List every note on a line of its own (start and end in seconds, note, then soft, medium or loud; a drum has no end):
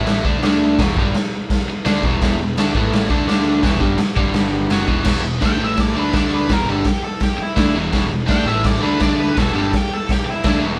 0.00 0.22 A1 loud
0.00 0.24 A2 medium
0.00 0.24 E3 loud
0.00 0.24 A3 loud
0.06 snare loud
0.06 crash medium
0.24 0.41 D2 loud
0.24 0.42 D3 medium
0.24 0.42 A3 loud
0.24 0.43 D4 loud
0.24 kick loud
0.43 0.76 D2 loud
0.43 0.78 D3 medium
0.43 0.78 A3 medium
0.43 0.79 D4 medium
0.43 snare loud
0.43 crash medium
0.78 0.95 E1 medium
0.78 0.96 E2 medium
0.78 0.96 B2 loud
0.78 0.96 E3 loud
0.78 kick loud
0.78 snare loud
0.78 crash medium
0.96 1.13 G1 loud
0.96 1.14 G2 medium
0.96 1.14 D3 medium
0.96 1.15 G3 loud
0.96 kick loud
1.14 snare loud
1.14 crash medium
1.50 kick loud
1.50 snare loud
1.50 crash medium
1.67 muted picked electric bass stroke soft
1.67 muted overdriven electric guitar stroke medium
1.85 2.02 D2 loud
1.85 2.02 D3 medium
1.85 2.02 A3 medium
1.85 2.03 D4 loud
1.85 snare loud
1.85 crash medium
2.03 2.19 E1 medium
2.03 2.20 E2 medium
2.03 2.21 B2 loud
2.03 2.21 E3 loud
2.03 kick loud
2.21 2.38 E1 medium
2.21 2.38 E2 loud
2.21 2.38 B2 loud
2.21 2.39 E3 loud
2.21 kick loud
2.21 snare loud
2.21 crash medium
2.39 2.56 E1 medium
2.39 2.53 E2 medium
2.39 2.53 B2 medium
2.57 2.74 D2 medium
2.57 2.74 D3 medium
2.57 2.74 A3 medium
2.57 2.75 D4 loud
2.57 snare loud
2.57 crash medium
2.75 3.08 A1 loud
2.75 3.10 A2 loud
2.75 3.10 E3 loud
2.75 3.10 A3 loud
2.75 kick loud
2.93 snare loud
2.93 crash medium
3.10 3.27 D2 loud
3.10 3.26 D3 medium
3.10 3.27 A3 loud
3.10 3.28 D4 loud
3.10 kick loud
3.27 3.61 D2 loud
3.27 3.63 D3 medium
3.27 3.63 A3 medium
3.27 3.63 D4 loud
3.27 snare loud
3.27 crash medium
3.63 3.80 E1 medium
3.63 3.79 E2 loud
3.63 3.79 B2 loud
3.63 3.81 E3 loud
3.63 kick loud
3.63 snare loud
3.63 crash medium
3.79 3.98 G1 medium
3.79 3.97 G2 medium
3.79 3.98 D3 medium
3.79 3.99 G3 loud
3.79 kick loud
3.98 snare loud
3.98 crash medium
4.16 4.67 G1 loud
4.16 4.69 G2 medium
4.16 4.70 D3 loud
4.16 4.71 G3 loud
4.16 kick loud
4.34 snare loud
4.34 crash medium
4.69 4.87 F#1 medium
4.69 4.86 F#2 medium
4.69 4.87 C#3 medium
4.69 4.88 F#3 loud
4.69 snare loud
4.69 crash medium
4.86 5.05 E1 medium
4.86 5.04 E2 medium
4.86 5.04 B2 medium
4.86 5.05 E3 loud
4.86 kick loud
5.05 5.22 E1 medium
5.05 5.23 E2 loud
5.05 5.23 B2 loud
5.05 5.24 E3 loud
5.05 kick loud
5.05 snare loud
5.05 crash loud
5.05 crash medium
5.23 5.40 E1 medium
5.23 5.38 E2 medium
5.23 5.39 B2 medium
5.41 5.57 D2 medium
5.41 5.56 D3 medium
5.41 5.58 A3 medium
5.41 5.60 D4 loud
5.41 kick loud
5.41 snare loud
5.41 crash medium
5.45 5.61 G5 medium
5.57 5.92 A1 medium
5.57 5.94 A2 medium
5.57 5.94 E3 loud
5.57 5.94 A3 loud
5.64 5.80 E5 medium
5.77 5.97 D5 medium
5.77 kick loud
5.77 snare loud
5.77 crash medium
5.95 6.13 D2 medium
5.95 6.11 D3 medium
5.95 6.12 A3 loud
5.95 6.13 D4 loud
5.99 6.15 B4 medium
6.12 6.47 D2 loud
6.12 6.48 D3 medium
6.12 6.49 A3 medium
6.12 6.49 D4 loud
6.12 kick loud
6.12 snare loud
6.12 crash medium
6.17 6.33 D5 medium
6.35 6.52 B4 medium
6.48 6.66 E1 medium
6.48 6.66 E2 loud
6.48 6.67 B2 medium
6.48 6.67 E3 loud
6.48 kick loud
6.48 snare loud
6.48 crash medium
6.52 6.68 A#4 medium
6.66 6.84 G1 medium
6.66 6.85 G2 medium
6.66 6.86 D3 loud
6.66 6.85 G3 loud
6.66 6.87 A4 medium
6.84 7.03 G4 medium
6.84 kick loud
6.84 snare loud
6.84 crash medium
7.04 7.21 A4 medium
7.20 7.39 G4 medium
7.20 kick loud
7.20 snare loud
7.20 crash medium
7.38 7.75 E4 medium
7.38 muted overdriven electric guitar stroke medium
7.38 muted picked electric bass stroke soft
7.56 7.73 D2 medium
7.56 7.74 D3 medium
7.56 7.74 A3 medium
7.56 7.75 D4 loud
7.56 kick loud
7.56 snare loud
7.56 crash medium
7.74 7.91 E1 loud
7.74 7.91 E2 loud
7.74 7.91 B2 medium
7.74 7.93 E3 loud
7.92 8.10 E1 medium
7.92 8.08 E2 medium
7.92 8.08 B2 loud
7.92 8.11 E3 loud
7.92 kick loud
7.92 snare loud
7.92 crash medium
8.09 8.28 E1 medium
8.09 8.24 E2 medium
8.09 8.25 B2 medium
8.26 8.45 D2 loud
8.26 8.45 D3 medium
8.26 8.46 A3 medium
8.26 8.46 D4 loud
8.26 kick loud
8.26 snare loud
8.26 crash medium
8.31 8.46 G5 loud
8.46 8.80 A1 loud
8.46 8.81 A2 loud
8.46 8.82 E3 loud
8.46 8.82 A3 loud
8.46 8.64 E5 loud
8.64 8.82 D5 medium
8.64 kick loud
8.64 snare loud
8.64 crash medium
8.81 8.98 D2 medium
8.81 8.99 D3 loud
8.81 9.00 A3 loud
8.81 9.00 D4 loud
8.81 9.02 B4 medium
9.00 9.35 D2 loud
9.00 9.36 D3 medium
9.00 9.36 A3 medium
9.00 9.37 D4 loud
9.00 9.19 D5 loud
9.00 kick loud
9.00 snare loud
9.00 crash medium
9.19 9.36 B4 medium
9.36 9.54 E1 medium
9.36 9.52 E2 loud
9.36 9.53 B2 loud
9.36 9.55 E3 loud
9.36 9.55 A4 medium
9.36 kick loud
9.36 snare loud
9.36 crash medium
9.53 9.72 G1 medium
9.53 9.71 G2 medium
9.53 9.71 D3 medium
9.53 9.72 G3 loud
9.58 9.76 A4 medium
9.73 9.93 G4 medium
9.73 kick loud
9.73 snare loud
9.73 crash medium
9.93 10.09 A4 medium
10.09 10.27 G4 medium
10.09 kick loud
10.09 snare loud
10.09 crash medium
10.26 muted overdriven electric guitar stroke medium
10.26 muted picked electric bass stroke soft
10.30 10.63 E4 loud
10.44 10.61 D2 medium
10.44 10.62 D3 medium
10.44 10.63 A3 medium
10.44 10.63 D4 medium
10.44 kick loud
10.44 snare loud
10.44 crash medium
10.62 10.79 E1 medium
10.62 10.79 E2 medium
10.62 10.79 B2 loud
10.62 10.79 E3 loud